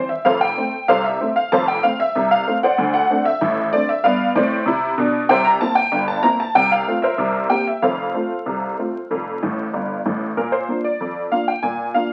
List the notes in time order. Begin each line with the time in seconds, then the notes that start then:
Already playing: E3 C4
0.09 E5
0.25 F1 F2 A4 C5 F5
0.41 G5
0.57 A3 C4
0.88 C2 C3 A4 C5 F5
1.04 E5
1.21 A3 C4
1.36 F5
1.52 F1 F2 C5 F5 A5
1.68 G5
1.83 A3 C4 F5
2.00 E5
2.15 C2 C3
2.31 F5
2.47 A3 C4
2.63 C5 D5 F#5
2.78 D2 D3
2.94 F#5
3.10 A3 C4 D4
3.25 E5
3.41 A1 A2
3.73 A3 C4 D4 D5
3.89 E5
4.04 G2 B3 B4 D5 F5
4.35 A2 C4 D5
4.66 C3 E4
4.98 B2 D4
5.29 C2 C3 C5 E5 G5
5.45 A#5
5.61 A#3 C4 E4 A5
5.75 G5
5.92 G1 G2
6.08 A5
6.23 A#3 C4 E4 A#5
6.40 A5
6.55 C2 C3 G5
6.71 F5
6.87 A3 C4 F4
7.02 A#4 C5 E5
7.18 C2 C3
7.50 A#3 C4 G4 G5
7.67 E5
7.82 F1 F2 A4 C5 F5
8.14 A3 C4 F4
8.46 C2 C3
8.79 A3 C4 F4
9.11 F1 F2
9.43 A1 A2
9.74 G1 G2
10.06 A1 A2
10.37 A#2 A#4
10.52 C5
10.69 A#3 D4 F4
10.84 D5
11.00 F2
11.32 A#3 D4 F4 F5
11.48 G5
11.63 A#2 G#5
11.94 A#3 D4 F4 F5